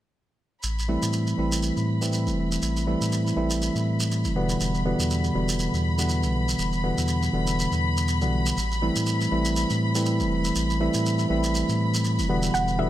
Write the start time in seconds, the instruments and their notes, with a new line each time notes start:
0.63 sub bass A1, violin section B5, shekere
0.79 shekere
0.88 tine electric piano E3 G3 A3 C4 E4
1.03 sub bass A2, shekere
1.13 shekere
1.27 shekere
1.38 sub bass A1, tine electric piano E3 G3 A3 C4 E4
1.52 shekere
1.63 shekere
1.77 sub bass A2, shekere
2.01 tine electric piano E3 G3 A3 C4 E4, shekere
2.12 shekere
2.27 sub bass E1, shekere
2.52 shekere
2.62 sub bass A1, shekere
2.77 shekere
2.87 tine electric piano E3 G3 A3 C4 E4
3.01 sub bass A2, shekere
3.12 shekere
3.27 shekere
3.36 sub bass A1, tine electric piano E3 G3 A3 C4 E4
3.50 shekere
3.62 shekere
3.75 sub bass A2, shekere
4.00 shekere
4.12 shekere
4.25 sub bass E1, shekere
4.35 tine electric piano B2 D3 E3 G3 B3
4.49 shekere
4.60 sub bass E1, shekere
4.74 shekere
4.85 tine electric piano B2 D3 E3 G3 B3
4.99 sub bass E2, shekere
5.10 shekere
5.24 shekere
5.34 sub bass E1, tine electric piano B2 D3 E3 G3 B3
5.49 shekere
5.59 shekere
5.74 sub bass E2, shekere
5.98 tine electric piano B2 D3 E3 G3 B3, shekere
6.09 shekere
6.23 sub bass B1, shekere
6.48 shekere
6.59 sub bass E1, shekere
6.73 shekere
6.83 tine electric piano B2 D3 E3 G3 B3
6.98 sub bass E2, shekere
7.08 shekere
7.23 shekere
7.33 sub bass E1, tine electric piano B2 D3 E3 G3 B3
7.47 shekere
7.59 shekere
7.72 sub bass E2, shekere
7.97 shekere
8.08 shekere
8.21 sub bass B1, tine electric piano B2 D3 E3 G3 B3, shekere
8.46 shekere
8.57 sub bass A1, shekere
8.72 shekere
8.82 tine electric piano E3 G3 A3 C4 E4
8.96 sub bass A2, shekere
9.06 shekere
9.21 shekere
9.31 sub bass A1, tine electric piano E3 G3 A3 C4 E4
9.45 shekere
9.56 shekere
9.70 sub bass A2, shekere
9.95 tine electric piano E3 G3 A3 C4 E4, shekere
10.05 shekere
10.20 sub bass E1, shekere
10.44 shekere
10.55 sub bass A1, shekere
10.70 shekere
10.80 tine electric piano E3 G3 A3 C4 E4
10.94 sub bass A2, shekere
11.06 shekere
11.19 shekere
11.29 sub bass A1, tine electric piano E3 G3 A3 C4 E4
11.44 shekere
11.54 shekere
11.69 sub bass A2, shekere
11.94 shekere
12.04 shekere
12.18 sub bass E1, shekere
12.29 tine electric piano B2 D3 E3 G3 B3
12.43 shekere
12.54 sub bass E1, synth pluck F#5, shekere
12.68 shekere
12.78 tine electric piano B2 D3 E3 G3 B3, synth pluck E5